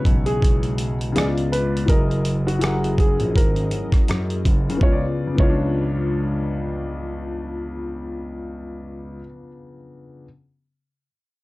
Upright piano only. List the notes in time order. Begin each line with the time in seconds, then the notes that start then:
Already playing: C#3 B3 E4 C#5
1.12 C#3 B3 F4
1.18 D5
1.86 F#3 E4 G#4
1.90 A#4 D#5
2.59 F#3 E4 G#4
2.63 A#4 F#5
4.70 C#3
4.77 B3
4.85 F4
4.92 D5
5.27 C#3
5.35 B3
5.42 F4
5.50 D4